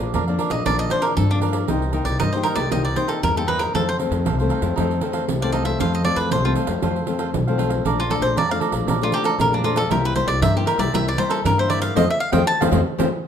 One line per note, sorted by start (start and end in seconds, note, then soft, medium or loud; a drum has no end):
0.00 0.16 A#1 medium
0.00 0.12 A#2 medium
0.00 0.23 F3 medium
0.00 0.23 A#3 medium
0.00 0.13 D4 soft
0.00 0.23 D4 medium
0.00 0.13 A#4 soft
0.00 0.13 D5 medium
0.00 0.14 F5 medium
0.14 0.36 F2 medium
0.14 0.63 F2 medium
0.14 0.23 D4 medium
0.14 0.23 A#4 medium
0.14 0.24 D5 medium
0.14 0.24 F5 medium
0.14 pandeiro medium
0.27 0.49 F3 medium
0.27 0.50 A#3 medium
0.27 0.50 D4 medium
0.27 0.38 A#4 soft
0.27 0.38 D5 soft
0.27 0.39 F5 soft
0.27 pandeiro soft
0.38 0.51 D4 medium
0.38 0.51 A#4 medium
0.38 0.50 D5 medium
0.38 0.49 F5 medium
0.38 pandeiro medium
0.50 0.63 A#1 medium
0.50 0.61 F3 medium
0.50 0.61 A#3 soft
0.50 0.61 D4 medium
0.50 0.64 A#4 soft
0.50 0.64 D5 soft
0.50 0.64 D#5 medium
0.50 0.64 F5 soft
0.50 pandeiro medium
0.65 0.88 A#1 medium
0.65 1.15 A#2 medium
0.65 0.88 F3 medium
0.65 0.88 A#3 medium
0.65 0.88 D4 medium
0.65 0.89 A#4 medium
0.65 0.79 D5 medium
0.65 0.90 D5 medium
0.65 0.90 F5 medium
0.65 pandeiro medium
0.79 0.91 D#5 medium
0.79 pandeiro soft
0.90 1.26 F3 soft
0.90 1.26 A#3 soft
0.90 1.01 D4 soft
0.90 1.26 D4 medium
0.90 1.01 A#4 soft
0.90 1.04 C5 medium
0.90 1.01 D5 soft
0.90 1.02 F5 medium
0.90 pandeiro medium
1.02 1.12 D4 medium
1.02 1.16 A#4 medium
1.02 1.12 A#4 medium
1.02 1.13 D5 medium
1.02 1.13 F5 medium
1.02 pandeiro medium
1.17 1.66 F2 medium
1.17 1.61 G2 medium
1.17 1.30 A4 medium
1.17 pandeiro medium
1.30 1.65 F3 medium
1.30 1.66 A#3 medium
1.30 1.38 D4 medium
1.30 1.66 D4 medium
1.30 1.41 A#4 soft
1.30 1.41 D5 soft
1.30 1.42 F5 soft
1.30 pandeiro soft
1.41 1.54 D4 medium
1.41 1.53 A#4 medium
1.41 1.52 D5 medium
1.41 1.51 F5 medium
1.41 pandeiro medium
1.52 1.67 A#4 soft
1.52 1.67 D5 soft
1.52 1.66 F5 soft
1.52 pandeiro medium
1.68 2.02 C2 medium
1.68 2.18 C3 medium
1.68 1.84 A#3 medium
1.68 1.91 D#4 medium
1.68 1.84 D#4 medium
1.68 1.85 G4 medium
1.68 1.92 A#4 medium
1.68 1.92 C5 medium
1.68 1.93 D#5 medium
1.68 pandeiro medium
1.82 pandeiro soft
1.92 2.18 A#3 medium
1.92 2.18 D#4 soft
1.92 2.18 D#4 medium
1.92 2.19 G4 medium
1.92 2.18 A#4 soft
1.92 2.18 C5 medium
1.92 2.19 D#5 soft
1.92 pandeiro medium
2.05 2.22 C2 medium
2.05 2.19 D5 medium
2.05 pandeiro medium
2.19 2.42 G2 medium
2.19 2.69 G2 soft
2.19 2.29 D#4 medium
2.19 2.29 A#4 medium
2.19 2.29 C5 medium
2.19 2.32 D#5 loud
2.19 2.29 D#5 medium
2.19 pandeiro medium
2.33 2.56 A#3 medium
2.33 2.56 D#4 medium
2.33 2.56 G4 medium
2.33 2.43 A#4 soft
2.33 2.45 C5 medium
2.33 2.44 C5 soft
2.33 2.44 D#5 medium
2.33 pandeiro soft
2.43 2.57 D#4 medium
2.43 2.57 A#4 medium
2.43 2.56 A#4 medium
2.43 2.55 C5 medium
2.43 2.54 D#5 medium
2.43 pandeiro medium
2.55 2.68 C2 medium
2.55 2.67 A#3 medium
2.55 2.67 D#4 medium
2.55 2.67 G4 medium
2.55 2.70 A#4 soft
2.55 2.70 C5 soft
2.55 2.70 D5 medium
2.55 2.69 D#5 medium
2.55 pandeiro medium
2.70 2.93 C2 medium
2.70 3.21 C3 medium
2.70 2.87 A#3 medium
2.70 2.94 D#4 medium
2.70 2.87 D#4 medium
2.70 2.87 G4 medium
2.70 2.94 A#4 medium
2.70 2.95 C5 medium
2.70 2.84 D#5 medium
2.70 2.96 D#5 medium
2.70 pandeiro medium
2.85 2.97 D5 medium
2.85 pandeiro soft
2.95 3.31 A#3 medium
2.95 3.06 D#4 soft
2.95 3.32 D#4 soft
2.95 3.32 G4 medium
2.95 3.06 A#4 soft
2.95 3.07 C5 medium
2.95 3.09 C5 medium
2.95 3.07 D#5 medium
2.95 pandeiro medium
3.07 3.18 D#4 medium
3.07 3.22 A4 medium
3.07 3.18 A#4 medium
3.07 3.18 C5 medium
3.07 3.18 D#5 medium
3.07 pandeiro medium
3.23 3.67 E2 medium
3.23 3.72 G2 medium
3.23 3.36 A#4 medium
3.23 pandeiro medium
3.36 3.71 A#3 medium
3.36 3.71 D#4 medium
3.36 3.72 G4 medium
3.36 3.49 A4 medium
3.36 3.46 A#4 soft
3.36 3.47 C5 soft
3.36 3.47 D#5 soft
3.36 pandeiro soft
3.47 3.60 D#4 medium
3.47 3.59 A#4 medium
3.47 3.61 B4 medium
3.47 3.58 C5 medium
3.47 3.57 D#5 medium
3.47 pandeiro medium
3.58 3.73 A#4 medium
3.58 3.73 A#4 soft
3.58 3.72 C5 soft
3.58 3.72 D#5 soft
3.58 pandeiro medium
3.74 4.07 F2 medium
3.74 4.24 F2 medium
3.74 3.90 D#3 medium
3.74 3.90 A3 medium
3.74 3.90 C4 medium
3.74 3.97 D#4 medium
3.74 3.97 A4 medium
3.74 3.87 A4 medium
3.74 3.98 C5 medium
3.74 3.99 F5 medium
3.74 pandeiro medium
3.89 3.96 C5 medium
3.89 pandeiro soft
3.98 4.24 D#3 soft
3.98 4.24 A3 soft
3.98 4.25 C4 medium
3.98 4.24 D#4 soft
3.98 4.24 A4 soft
3.98 4.25 C5 medium
3.98 4.25 F5 medium
3.98 pandeiro medium
4.11 4.28 F2 medium
4.11 pandeiro medium
4.25 4.48 C2 medium
4.25 4.75 C3 medium
4.25 4.34 D#4 medium
4.25 4.35 A4 medium
4.25 4.35 C5 medium
4.25 4.35 F5 medium
4.25 pandeiro medium
4.38 4.61 D#3 medium
4.38 4.62 A3 medium
4.38 4.62 C4 medium
4.38 4.49 A4 soft
4.38 4.49 C5 soft
4.38 4.50 F5 soft
4.38 pandeiro soft
4.49 4.62 D#4 medium
4.49 4.62 A4 medium
4.49 4.61 C5 medium
4.49 4.60 F5 medium
4.49 pandeiro medium
4.61 4.74 F2 medium
4.61 4.72 D#3 medium
4.61 4.73 A3 medium
4.61 4.73 C4 medium
4.61 4.76 A4 soft
4.61 4.75 C5 soft
4.61 4.75 F5 soft
4.61 pandeiro medium
4.76 4.99 F2 medium
4.76 5.27 F2 medium
4.76 4.99 D#3 medium
4.76 5.00 A3 medium
4.76 5.00 C4 medium
4.76 5.00 D#4 medium
4.76 5.00 A4 medium
4.76 5.01 C5 medium
4.76 5.02 F5 medium
4.76 pandeiro medium
4.91 pandeiro soft
5.01 5.37 D#3 soft
5.01 5.37 A3 soft
5.01 5.38 C4 medium
5.01 5.11 D#4 soft
5.01 5.12 A4 soft
5.01 5.12 C5 soft
5.01 5.12 F5 medium
5.01 pandeiro medium
5.13 5.23 D#4 medium
5.13 5.23 A4 medium
5.13 5.24 C5 medium
5.13 5.24 F5 medium
5.13 pandeiro medium
5.29 5.72 C2 medium
5.29 5.78 C3 medium
5.29 pandeiro medium
5.42 5.64 D#3 medium
5.42 5.64 A3 medium
5.42 5.64 C4 medium
5.42 5.52 A4 soft
5.42 5.53 C5 soft
5.42 5.52 D5 medium
5.42 5.53 F5 soft
5.42 pandeiro soft
5.52 5.65 D#4 medium
5.52 5.65 A4 medium
5.52 5.64 C5 medium
5.52 5.65 D#5 medium
5.52 5.63 F5 medium
5.52 pandeiro medium
5.64 6.01 F3 medium
5.64 6.01 A3 medium
5.64 6.01 C4 medium
5.64 5.78 A4 soft
5.64 5.78 C5 soft
5.64 5.79 E5 medium
5.64 5.77 F5 soft
5.64 pandeiro medium
5.79 6.29 F2 medium
5.79 6.13 F2 medium
5.79 6.03 F4 medium
5.79 6.04 A4 medium
5.79 6.04 C5 medium
5.79 5.93 F5 medium
5.79 6.05 F5 medium
5.79 pandeiro medium
5.94 6.04 D#5 medium
5.94 pandeiro soft
6.04 6.40 F3 medium
6.04 6.40 A3 medium
6.04 6.40 C4 medium
6.04 6.30 F4 soft
6.04 6.30 A4 medium
6.04 6.30 C5 soft
6.04 6.18 D5 medium
6.04 6.30 F5 medium
6.04 pandeiro medium
6.16 6.33 F2 medium
6.16 6.30 B4 medium
6.16 pandeiro medium
6.31 6.53 C2 medium
6.31 6.80 C3 medium
6.31 6.40 F4 medium
6.31 6.41 A4 medium
6.31 6.44 C5 loud
6.31 6.41 C5 medium
6.31 6.41 F5 medium
6.31 pandeiro medium
6.44 6.66 F3 medium
6.44 6.66 A3 medium
6.44 6.67 C4 medium
6.44 6.52 F4 medium
6.44 6.55 A4 soft
6.44 6.55 C5 soft
6.44 6.56 F5 medium
6.44 pandeiro soft
6.55 6.68 F4 medium
6.55 6.67 A4 medium
6.55 6.67 C5 medium
6.55 6.65 F5 medium
6.55 pandeiro medium
6.67 6.80 F2 medium
6.67 6.78 F3 medium
6.67 6.78 A3 medium
6.67 6.78 C4 medium
6.67 6.81 A4 soft
6.67 6.81 C5 soft
6.67 6.80 F5 soft
6.67 pandeiro medium
6.82 7.31 F2 medium
6.82 7.04 F2 medium
6.82 6.98 F3 medium
6.82 6.98 A3 medium
6.82 6.98 C4 medium
6.82 7.05 F4 medium
6.82 7.06 A4 medium
6.82 7.07 C5 medium
6.82 7.07 F5 medium
6.82 pandeiro medium
6.96 pandeiro soft
7.06 7.42 F3 soft
7.06 7.42 A3 soft
7.06 7.43 C4 medium
7.06 7.17 F4 soft
7.06 7.18 A4 medium
7.06 7.18 C5 soft
7.06 7.19 F5 soft
7.06 pandeiro medium
7.19 7.29 F4 medium
7.19 7.29 A4 medium
7.19 7.29 C5 medium
7.19 7.30 F5 medium
7.19 pandeiro medium
7.34 7.78 B1 medium
7.34 pandeiro medium
7.47 7.82 F3 medium
7.47 7.82 A3 medium
7.47 7.82 C4 medium
7.47 7.57 A4 soft
7.47 7.58 C5 soft
7.47 7.59 F5 medium
7.47 pandeiro soft
7.58 7.71 F4 medium
7.58 7.70 A4 medium
7.58 7.70 C5 medium
7.58 7.68 F5 medium
7.58 pandeiro medium
7.70 7.84 A4 soft
7.70 7.83 C5 soft
7.70 7.83 F5 soft
7.70 pandeiro medium
7.85 8.18 A#1 medium
7.85 8.34 A#2 medium
7.85 8.01 F3 medium
7.85 8.01 A3 medium
7.85 8.01 D4 medium
7.85 8.08 A4 medium
7.85 8.09 D5 medium
7.85 8.09 F5 medium
7.85 8.10 A#5 medium
7.85 pandeiro medium
7.99 8.11 F4 medium
7.99 pandeiro soft
8.09 8.35 F3 medium
8.09 8.35 A3 soft
8.09 8.35 D4 medium
8.09 8.35 A4 soft
8.09 8.23 A4 medium
8.09 8.35 D5 soft
8.09 8.35 F5 soft
8.09 8.36 A#5 medium
8.09 pandeiro medium
8.21 8.38 A#1 medium
8.21 8.36 C5 medium
8.21 pandeiro medium
8.36 8.58 F2 medium
8.36 8.85 F2 medium
8.36 8.45 A4 medium
8.36 8.46 D5 medium
8.36 8.50 D5 medium
8.36 8.46 F5 medium
8.36 8.46 A#5 medium
8.36 pandeiro medium
8.49 8.98 F3 medium
8.49 8.98 A3 medium
8.49 8.98 D4 medium
8.49 8.59 D5 soft
8.49 8.60 F5 soft
8.49 8.59 F5 medium
8.49 8.61 A#5 medium
8.49 pandeiro soft
8.60 8.73 A4 medium
8.60 8.73 D5 medium
8.60 8.72 F5 medium
8.60 8.71 A#5 medium
8.60 pandeiro medium
8.72 8.84 A#1 medium
8.72 8.86 D5 soft
8.72 8.86 F5 soft
8.72 8.86 A#5 soft
8.72 pandeiro medium
8.87 9.09 A#1 medium
8.87 9.37 A#2 medium
8.87 9.11 A4 medium
8.87 9.12 D5 medium
8.87 9.12 F5 medium
8.87 9.13 A#5 medium
8.87 pandeiro medium
9.01 9.36 F3 medium
9.01 9.36 A3 medium
9.01 9.36 D4 medium
9.01 9.15 F4 medium
9.01 pandeiro soft
9.12 9.25 G4 medium
9.12 9.23 A4 soft
9.12 9.23 D5 medium
9.12 9.24 F5 medium
9.12 9.24 A#5 medium
9.12 pandeiro medium
9.24 9.34 A4 medium
9.24 9.38 A4 medium
9.24 9.34 D5 medium
9.24 9.35 F5 medium
9.24 9.35 A#5 medium
9.24 pandeiro medium
9.39 9.83 A#1 loud
9.39 9.88 F2 medium
9.39 9.61 F3 medium
9.39 9.61 A3 medium
9.39 9.61 D4 medium
9.39 9.53 A#4 medium
9.39 pandeiro medium
9.53 9.64 D4 medium
9.53 9.63 D5 soft
9.53 9.64 F5 soft
9.53 9.64 A#5 medium
9.53 pandeiro soft
9.64 9.80 F3 medium
9.64 9.80 A3 medium
9.64 9.80 D4 medium
9.64 9.77 F4 medium
9.64 9.76 A4 medium
9.64 9.76 D5 medium
9.64 9.75 F5 medium
9.64 9.74 A#5 medium
9.64 pandeiro medium
9.76 9.90 A4 medium
9.76 9.90 D5 soft
9.76 9.89 F5 soft
9.76 9.89 A#5 medium
9.76 pandeiro medium
9.90 10.23 C2 loud
9.90 10.40 C3 medium
9.90 10.12 G3 medium
9.90 10.13 A#3 medium
9.90 10.14 E4 medium
9.90 10.13 E4 medium
9.90 10.14 A#4 medium
9.90 10.03 A#4 medium
9.90 10.15 C5 medium
9.90 10.16 E5 medium
9.90 pandeiro medium
10.05 10.15 B4 medium
10.05 pandeiro soft
10.15 10.40 G3 medium
10.15 10.40 A#3 medium
10.15 10.40 E4 medium
10.15 10.41 A#4 soft
10.15 10.28 C5 medium
10.15 10.41 C5 medium
10.15 10.41 E5 medium
10.15 pandeiro medium
10.26 10.43 C2 medium
10.26 10.41 D5 medium
10.26 pandeiro medium
10.42 10.64 G2 medium
10.42 10.91 G2 medium
10.42 10.51 E4 medium
10.42 10.51 A#4 medium
10.42 10.51 C5 medium
10.42 10.55 E5 medium
10.42 10.52 E5 medium
10.42 pandeiro medium
10.55 10.77 G3 medium
10.55 10.77 A#3 medium
10.55 10.77 E4 medium
10.55 10.67 G4 medium
10.55 10.65 A#4 soft
10.55 10.66 C5 soft
10.55 10.66 E5 medium
10.55 pandeiro soft
10.66 10.79 E4 medium
10.66 10.78 A#4 medium
10.66 10.80 A#4 medium
10.66 10.78 C5 medium
10.66 10.76 E5 medium
10.66 pandeiro medium
10.78 10.90 C2 medium
10.78 10.88 G3 medium
10.78 10.89 A#3 medium
10.78 10.89 E4 medium
10.78 10.92 A#4 soft
10.78 10.92 C5 soft
10.78 10.92 D5 medium
10.78 10.91 E5 medium
10.78 pandeiro medium
10.93 11.15 C2 medium
10.93 11.42 C3 medium
10.93 11.09 G3 medium
10.93 11.09 A#3 medium
10.93 11.16 E4 medium
10.93 11.09 E4 medium
10.93 11.17 A#4 medium
10.93 11.18 C5 medium
10.93 11.18 E5 medium
10.93 11.06 E5 loud
10.93 pandeiro medium
11.08 11.20 D5 medium
11.08 pandeiro soft
11.18 11.53 G3 medium
11.18 11.53 A#3 medium
11.18 11.28 E4 soft
11.18 11.53 E4 medium
11.18 11.28 A#4 soft
11.18 11.31 C5 medium
11.18 11.29 C5 medium
11.18 11.29 E5 medium
11.18 pandeiro medium
11.29 11.39 E4 medium
11.29 11.44 A4 medium
11.29 11.40 A#4 medium
11.29 11.40 C5 medium
11.29 11.40 E5 medium
11.29 pandeiro medium
11.45 11.88 G2 loud
11.45 11.94 G2 medium
11.45 11.58 A#4 medium
11.45 pandeiro medium
11.58 11.93 G3 medium
11.58 11.93 A#3 medium
11.58 11.93 E4 medium
11.58 11.68 A#4 soft
11.58 11.68 C5 soft
11.58 11.71 C5 medium
11.58 11.69 E5 soft
11.58 pandeiro soft
11.68 11.81 E4 medium
11.68 11.81 A#4 medium
11.68 11.80 C5 medium
11.68 11.81 D5 medium
11.68 11.79 E5 medium
11.68 pandeiro medium
11.80 11.94 A#4 soft
11.80 11.94 C5 soft
11.80 11.93 E5 medium
11.80 11.95 F5 loud
11.80 pandeiro medium
11.95 12.06 F2 loud
11.95 12.04 F3 loud
11.95 12.04 A3 loud
11.95 12.04 C4 loud
11.95 12.04 C5 medium
11.95 12.04 D#5 medium
11.95 12.09 D#5 medium
11.95 12.04 F5 medium
11.95 pandeiro medium
12.10 12.20 E5 medium
12.20 12.32 F5 loud
12.32 12.43 F2 medium
12.32 12.41 F3 medium
12.32 12.41 A3 loud
12.32 12.41 C4 loud
12.32 12.41 C5 medium
12.32 12.41 D#5 medium
12.32 12.41 F5 medium
12.32 12.46 G5 medium
12.32 pandeiro medium
12.47 12.63 A5 loud
12.61 12.71 F2 medium
12.61 12.69 F3 medium
12.61 12.69 A3 medium
12.61 12.69 C4 medium
12.61 12.69 C5 medium
12.61 12.69 D#5 loud
12.61 12.69 F5 loud
12.61 pandeiro loud
12.71 12.82 F2 loud
12.71 12.80 F3 loud
12.71 12.80 A3 loud
12.71 12.80 C4 loud
12.71 12.80 C5 medium
12.71 12.80 D#5 loud
12.71 12.80 F5 loud
12.71 pandeiro loud
12.98 13.08 F2 medium
12.98 13.07 F3 medium
12.98 13.07 A3 loud
12.98 13.07 C4 loud
12.98 13.07 C5 loud
12.98 13.07 D#5 medium
12.98 13.07 F5 medium
12.98 pandeiro medium